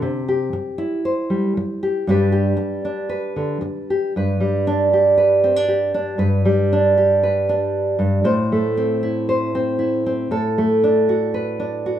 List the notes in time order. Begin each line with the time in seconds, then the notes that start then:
Already playing: G4
0.02 C3
0.28 G4
0.53 muted nylon-string guitar stroke
0.78 E4
1.05 C5
1.30 G3
1.57 muted nylon-string guitar stroke
1.83 G4
2.07 G2 G3 D4 G4 B4
2.32 G4
2.56 muted nylon-string guitar stroke
2.85 D4
3.09 B4
3.36 D3
3.61 muted nylon-string guitar stroke
3.90 G4
4.16 G2 B4
4.40 G3
4.67 D4
4.93 G4
5.18 B4
5.44 C4
5.56 D4
5.68 G4
5.94 D4
6.18 G2 B4
6.45 G3
6.73 D4
6.97 G4
7.23 B4
7.49 D4
7.99 G2
8.24 A2 C5
8.52 A3
8.77 C4
9.03 E4
9.29 C5
9.55 C4
9.79 E4
10.06 C4
10.31 A2 A4
10.58 A3
10.84 D4
11.09 F#4
11.34 B4
11.60 D4
11.86 F#4